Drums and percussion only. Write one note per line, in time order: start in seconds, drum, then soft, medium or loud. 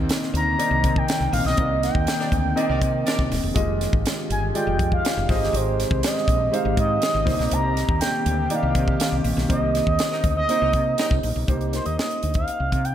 0.09 snare loud
0.09 closed hi-hat loud
0.23 snare soft
0.35 closed hi-hat medium
0.60 closed hi-hat medium
0.84 kick loud
0.84 closed hi-hat medium
0.96 kick medium
1.08 snare loud
1.08 closed hi-hat loud
1.33 open hi-hat medium
1.47 snare soft
1.57 kick loud
1.57 closed hi-hat medium
1.83 snare soft
1.83 closed hi-hat medium
1.95 kick loud
2.07 snare loud
2.07 closed hi-hat loud
2.21 snare soft
2.32 kick medium
2.32 closed hi-hat medium
2.57 closed hi-hat medium
2.82 kick loud
2.82 closed hi-hat medium
3.07 snare loud
3.07 closed hi-hat loud
3.19 kick medium
3.32 snare soft
3.32 open hi-hat medium
3.56 kick loud
3.56 closed hi-hat loud
3.81 snare soft
3.81 closed hi-hat medium
3.93 kick loud
4.06 snare loud
4.06 closed hi-hat loud
4.31 closed hi-hat medium
4.55 closed hi-hat medium
4.79 kick loud
4.79 closed hi-hat medium
4.92 kick medium
5.05 snare loud
5.05 closed hi-hat loud
5.29 kick loud
5.29 snare soft
5.29 open hi-hat medium
5.44 snare soft
5.54 closed hi-hat loud
5.80 snare soft
5.80 closed hi-hat medium
5.91 kick loud
6.03 snare loud
6.03 closed hi-hat loud
6.17 snare soft
6.28 kick medium
6.28 closed hi-hat medium
6.54 closed hi-hat medium
6.77 kick loud
6.77 closed hi-hat medium
7.02 snare loud
7.02 closed hi-hat loud
7.27 kick loud
7.27 snare soft
7.27 open hi-hat medium
7.40 snare soft
7.51 closed hi-hat loud
7.77 snare soft
7.77 closed hi-hat medium
7.89 kick loud
8.01 snare loud
8.01 closed hi-hat loud
8.26 closed hi-hat medium
8.50 closed hi-hat medium
8.75 kick loud
8.75 closed hi-hat medium
8.88 kick medium
9.00 snare loud
9.00 closed hi-hat loud
9.24 open hi-hat medium
9.38 snare soft
9.50 kick loud
9.50 closed hi-hat loud
9.75 snare soft
9.75 closed hi-hat medium
9.87 kick loud
9.99 snare loud
9.99 closed hi-hat loud
10.12 snare soft
10.24 kick medium
10.24 closed hi-hat medium
10.49 closed hi-hat medium
10.73 kick loud
10.73 closed hi-hat medium
10.98 snare loud
10.98 closed hi-hat loud
11.11 kick loud
11.23 open hi-hat medium
11.48 kick loud
11.48 closed hi-hat medium
11.61 closed hi-hat soft
11.73 snare soft
11.73 closed hi-hat medium
11.86 closed hi-hat soft
11.99 snare loud
12.11 closed hi-hat soft
12.23 closed hi-hat medium
12.34 kick medium
12.34 closed hi-hat soft
12.48 closed hi-hat medium
12.72 kick medium
12.72 closed hi-hat medium
12.85 closed hi-hat soft